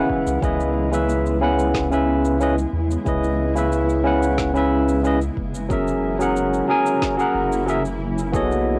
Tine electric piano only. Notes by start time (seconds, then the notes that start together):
Already playing: C#3 C#4 E4 B4 F#5
0.41 C#3 C#4 E4 B4 D#5
0.91 C#3 C#4 E4 B4 E5
1.40 C#3 C#4 E4 B4 F#5
1.90 C#3 C#4 E4 B4 E5
2.39 C#3 C#4 E4 B4 D#5
3.05 C#3 C#4 E4 B4 D#5
3.55 C#3 C#4 E4 B4 E5
4.04 C#3 C#4 E4 B4 F#5
4.54 C#3 C#4 E4 B4 E5
5.03 C#3 C#4 E4 B4 D#5
5.69 F#3 C#4 G#4 A#4 E5
6.19 F#3 C#4 G#4 A#4 F#5
6.68 F#3 C#4 G#4 A#4 G#5
7.17 F#3 C#4 G#4 A#4 F#5
7.66 F#3 C#4 G#4 A#4 E5
8.32 B3 F#4 G#4 A4 C#5 D#5